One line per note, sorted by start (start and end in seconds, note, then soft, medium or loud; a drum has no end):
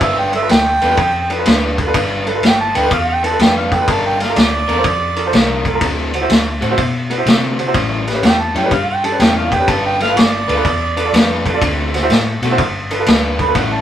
0.01 0.48 G1 medium
0.01 0.33 G3 medium
0.01 0.33 D4 medium
0.01 0.33 F4 loud
0.01 0.32 B4 medium
0.01 0.20 E5 loud
0.01 kick loud
0.01 ride medium
0.19 0.34 G5 medium
0.33 0.38 A4 soft
0.33 0.38 B4 medium
0.33 0.50 E5 loud
0.33 muted overdriven electric guitar stroke soft
0.33 ride medium
0.42 0.50 F4 medium
0.42 0.50 A4 medium
0.42 0.50 B4 medium
0.49 0.81 D2 medium
0.49 1.44 G5 loud
0.49 muted overdriven electric guitar stroke soft
0.49 snare loud
0.49 ride medium
0.82 0.97 E2 medium
0.82 0.96 G3 medium
0.82 0.97 D4 medium
0.82 0.97 F4 medium
0.82 0.86 A4 soft
0.82 0.97 B4 medium
0.82 0.87 B4 soft
0.82 ride medium
0.90 0.98 F4 medium
0.90 0.98 A4 medium
0.90 0.99 B4 medium
0.97 1.44 F2 medium
0.97 muted overdriven electric guitar stroke soft
0.97 kick loud
0.97 ride medium
1.30 1.34 A4 medium
1.30 1.35 B4 medium
1.30 muted overdriven electric guitar stroke soft
1.30 ride medium
1.38 1.46 F4 medium
1.38 1.47 A4 medium
1.38 1.47 B4 medium
1.45 1.93 D2 medium
1.45 1.78 G3 medium
1.45 1.78 D4 medium
1.45 1.78 F4 medium
1.45 1.77 B4 medium
1.45 snare loud
1.45 ride medium
1.78 1.83 A4 medium
1.78 1.83 B4 medium
1.78 muted overdriven electric guitar stroke medium
1.78 kick medium
1.78 ride medium
1.87 1.95 F4 medium
1.87 1.95 A4 medium
1.87 1.95 B4 medium
1.94 2.41 G1 medium
1.94 2.27 G3 medium
1.94 2.26 D4 medium
1.94 2.26 F4 medium
1.94 2.26 B4 medium
1.94 kick loud
1.94 ride medium
2.26 2.31 A4 medium
2.26 2.31 B4 medium
2.26 muted overdriven electric guitar stroke soft
2.26 ride medium
2.34 2.43 F4 medium
2.34 2.43 A4 medium
2.34 2.43 B4 medium
2.43 2.74 G1 medium
2.43 2.59 G5 loud
2.43 muted overdriven electric guitar stroke soft
2.43 snare loud
2.43 ride medium
2.60 2.78 A5 loud
2.75 2.91 D2 medium
2.75 2.90 G3 medium
2.75 2.90 D4 medium
2.75 2.90 F4 medium
2.75 2.79 A4 soft
2.75 2.91 B4 medium
2.75 2.80 B4 soft
2.75 2.91 G5 medium
2.75 ride medium
2.83 2.91 F4 medium
2.83 2.92 A4 medium
2.83 2.92 B4 medium
2.91 3.38 E2 medium
2.91 3.08 F5 loud
2.91 muted overdriven electric guitar stroke medium
2.91 kick loud
2.91 ride medium
3.09 3.24 G5 loud
3.23 3.27 A4 soft
3.23 3.28 B4 soft
3.23 3.40 A5 medium
3.23 muted overdriven electric guitar stroke medium
3.23 ride medium
3.31 3.39 F4 medium
3.31 3.40 A4 medium
3.31 3.40 B4 medium
3.39 3.86 F2 loud
3.39 3.72 G3 medium
3.39 3.71 D4 medium
3.39 3.71 F4 medium
3.39 3.71 B4 loud
3.39 3.56 G5 loud
3.39 snare loud
3.39 ride medium
3.57 3.75 F5 medium
3.72 3.76 A4 soft
3.72 3.77 B4 soft
3.72 3.88 G5 loud
3.72 muted overdriven electric guitar stroke soft
3.72 kick medium
3.72 ride medium
3.80 3.88 F4 medium
3.80 3.89 A4 medium
3.80 3.89 B4 medium
3.88 4.35 G1 medium
3.88 4.20 G3 medium
3.88 4.20 D4 medium
3.88 4.20 F4 medium
3.88 4.19 A#4 medium
3.88 4.05 A5 medium
3.88 kick loud
3.88 ride medium
4.06 4.22 G5 medium
4.20 4.25 A4 soft
4.20 4.25 A#4 medium
4.20 4.39 F5 loud
4.20 muted overdriven electric guitar stroke soft
4.20 snare soft
4.20 ride medium
4.28 4.36 F4 medium
4.28 4.37 A4 medium
4.28 4.37 A#4 medium
4.36 4.68 D2 medium
4.36 5.78 D5 loud
4.36 muted overdriven electric guitar stroke soft
4.36 snare loud
4.36 ride medium
4.68 4.84 E2 medium
4.68 4.83 G3 medium
4.68 4.84 D4 medium
4.68 4.84 F4 medium
4.68 4.73 A4 soft
4.68 4.84 A#4 loud
4.68 4.74 A#4 soft
4.68 ride medium
4.77 4.85 F4 medium
4.77 4.85 A4 medium
4.77 4.86 C5 medium
4.84 5.31 F2 medium
4.84 muted overdriven electric guitar stroke medium
4.84 kick loud
4.84 ride medium
5.16 5.21 A4 medium
5.16 5.22 A#4 medium
5.16 muted overdriven electric guitar stroke medium
5.16 ride medium
5.26 5.33 F4 medium
5.26 5.34 A4 medium
5.26 5.34 C5 medium
5.32 5.80 C2 loud
5.32 5.65 G3 medium
5.32 5.65 D4 medium
5.32 5.65 F4 loud
5.32 5.64 A#4 loud
5.32 snare loud
5.32 ride medium
5.65 5.70 A4 medium
5.65 5.70 A#4 medium
5.65 muted overdriven electric guitar stroke medium
5.65 kick medium
5.65 ride medium
5.74 5.82 F4 medium
5.74 5.82 A4 medium
5.74 5.82 A#4 medium
5.81 6.28 D2 loud
5.81 6.13 D3 medium
5.81 6.13 A3 medium
5.81 6.12 C4 loud
5.81 6.12 F#4 medium
5.81 kick loud
5.81 ride medium
6.13 6.18 F#4 medium
6.13 6.18 C5 medium
6.13 muted overdriven electric guitar stroke soft
6.13 ride medium
6.21 6.29 E4 medium
6.21 6.30 F#4 medium
6.21 6.30 C5 medium
6.29 6.61 D2 medium
6.29 muted overdriven electric guitar stroke medium
6.29 snare loud
6.29 ride medium
6.61 6.77 A2 medium
6.61 6.77 D3 medium
6.61 6.77 A3 medium
6.61 6.77 C4 loud
6.61 6.77 F#4 medium
6.61 6.66 F#4 medium
6.61 6.67 C5 medium
6.61 ride medium
6.70 6.78 E4 medium
6.70 6.79 F#4 medium
6.70 6.79 C5 medium
6.78 7.25 B2 medium
6.78 muted overdriven electric guitar stroke soft
6.78 kick loud
6.78 ride medium
7.10 7.14 F#4 medium
7.10 7.15 B4 medium
7.10 muted overdriven electric guitar stroke medium
7.10 ride medium
7.18 7.26 E4 medium
7.18 7.26 F#4 medium
7.18 7.27 C5 medium
7.26 7.73 C3 medium
7.26 7.58 D3 medium
7.26 7.58 A3 medium
7.26 7.57 C4 loud
7.26 7.57 F#4 loud
7.26 snare loud
7.26 ride medium
7.58 7.63 F#4 medium
7.58 7.63 C5 medium
7.58 muted overdriven electric guitar stroke soft
7.58 ride medium
7.66 7.75 E4 medium
7.66 7.75 F#4 medium
7.66 7.75 C5 medium
7.74 8.21 A1 medium
7.74 8.07 A2 medium
7.74 8.06 G3 medium
7.74 8.06 C#4 medium
7.74 8.05 E4 medium
7.74 kick loud
7.74 ride medium
8.06 8.11 G4 soft
8.06 8.11 B4 medium
8.06 muted overdriven electric guitar stroke soft
8.06 snare soft
8.06 ride medium
8.14 8.23 C#4 medium
8.14 8.23 G4 medium
8.14 8.24 B4 medium
8.22 8.54 E2 medium
8.22 8.42 G5 loud
8.22 muted overdriven electric guitar stroke soft
8.22 snare loud
8.22 ride medium
8.41 8.56 A5 loud
8.55 8.71 F#2 medium
8.55 8.70 A2 medium
8.55 8.71 G3 medium
8.55 8.71 C#4 medium
8.55 8.71 E4 medium
8.55 8.60 G4 soft
8.55 8.60 C#5 soft
8.55 8.72 G5 loud
8.55 ride medium
8.64 8.72 C#4 medium
8.64 8.72 G4 medium
8.64 8.73 B4 medium
8.71 9.18 G2 medium
8.71 8.88 F5 loud
8.71 muted overdriven electric guitar stroke soft
8.71 kick loud
8.71 ride medium
8.89 9.04 G5 loud
9.04 9.08 G4 soft
9.04 9.08 A4 medium
9.04 9.22 A5 loud
9.04 muted overdriven electric guitar stroke soft
9.04 ride medium
9.12 9.20 C#4 medium
9.12 9.20 G4 medium
9.12 9.21 B4 medium
9.19 9.66 E2 loud
9.19 9.52 A2 medium
9.19 9.52 G3 medium
9.19 9.51 C#4 medium
9.19 9.51 E4 medium
9.19 9.36 G5 loud
9.19 snare loud
9.19 ride medium
9.37 9.55 F5 medium
9.51 9.56 G4 soft
9.51 9.57 B4 soft
9.51 9.71 G5 loud
9.51 muted overdriven electric guitar stroke medium
9.51 kick medium
9.51 ride medium
9.60 9.68 C#4 medium
9.60 9.68 G4 medium
9.60 9.69 B4 medium
9.68 10.15 G1 loud
9.68 10.00 G3 medium
9.68 10.00 D4 medium
9.68 10.00 F4 loud
9.68 9.99 B4 loud
9.68 9.84 A5 medium
9.68 kick loud
9.68 ride medium
9.86 10.01 G5 medium
10.00 10.04 A4 soft
10.00 10.05 B4 medium
10.00 10.20 F5 loud
10.00 muted overdriven electric guitar stroke soft
10.00 snare soft
10.00 ride medium
10.08 10.17 F4 medium
10.08 10.17 A4 medium
10.08 10.17 B4 medium
10.16 10.48 G1 medium
10.16 11.59 D5 loud
10.16 muted overdriven electric guitar stroke soft
10.16 snare loud
10.16 ride medium
10.48 10.64 D2 medium
10.48 10.63 G3 medium
10.48 10.64 D4 medium
10.48 10.64 F4 medium
10.48 10.53 A4 soft
10.48 10.64 B4 loud
10.48 10.54 B4 soft
10.48 ride medium
10.56 10.65 F4 medium
10.56 10.65 A4 medium
10.56 10.65 B4 medium
10.64 11.12 E2 medium
10.64 muted overdriven electric guitar stroke soft
10.64 kick loud
10.64 ride medium
10.97 11.01 A4 medium
10.97 11.02 B4 medium
10.97 muted overdriven electric guitar stroke medium
10.97 ride medium
11.05 11.13 F4 medium
11.05 11.14 A4 medium
11.05 11.14 D5 medium
11.13 11.60 F2 loud
11.13 11.46 G3 medium
11.13 11.45 D4 medium
11.13 11.45 F4 medium
11.13 11.44 B4 medium
11.13 snare loud
11.13 ride loud
11.46 11.50 A4 medium
11.46 11.51 B4 medium
11.46 muted overdriven electric guitar stroke medium
11.46 kick medium
11.46 ride medium
11.54 11.62 F4 medium
11.54 11.62 A4 medium
11.54 11.62 D5 medium
11.61 12.09 D2 loud
11.61 11.94 D3 medium
11.61 11.93 A3 loud
11.61 11.93 C4 medium
11.61 11.92 F#4 medium
11.61 kick loud
11.61 ride loud
11.94 11.98 F#4 medium
11.94 11.99 C5 medium
11.94 muted overdriven electric guitar stroke medium
11.94 snare soft
11.94 ride medium
12.03 12.11 E4 medium
12.03 12.11 F#4 medium
12.03 12.11 C5 medium
12.10 12.41 A2 loud
12.10 muted overdriven electric guitar stroke medium
12.10 snare loud
12.10 ride medium
12.42 12.60 B2 medium
12.42 12.59 D3 medium
12.42 12.59 A3 medium
12.42 12.59 C4 loud
12.42 12.59 F#4 loud
12.42 12.47 F#4 medium
12.42 12.48 A4 medium
12.42 ride medium
12.51 12.59 E4 medium
12.51 12.59 F#4 medium
12.51 12.59 C5 medium
12.58 13.05 G1 medium
12.58 muted overdriven electric guitar stroke medium
12.58 kick loud
12.58 ride medium
12.91 12.95 A4 medium
12.91 12.96 B4 medium
12.91 muted overdriven electric guitar stroke soft
12.91 ride medium
12.99 13.07 F4 medium
12.99 13.08 A4 medium
12.99 13.08 B4 medium
13.06 13.54 D2 loud
13.06 13.40 G3 medium
13.06 13.39 D4 medium
13.06 13.39 F4 medium
13.06 13.38 B4 loud
13.06 snare loud
13.06 ride medium
13.39 13.44 A4 soft
13.39 13.44 B4 medium
13.39 13.58 B5 loud
13.39 muted overdriven electric guitar stroke medium
13.39 kick medium
13.39 ride medium
13.47 13.56 F4 medium
13.47 13.56 A4 medium
13.47 13.56 B4 medium
13.55 13.81 A1 loud
13.55 13.81 A2 medium
13.55 13.81 G3 medium
13.55 13.81 C#4 medium
13.55 13.81 E4 medium
13.55 13.74 F#5 medium
13.55 kick loud
13.55 ride medium
13.73 13.81 A5 medium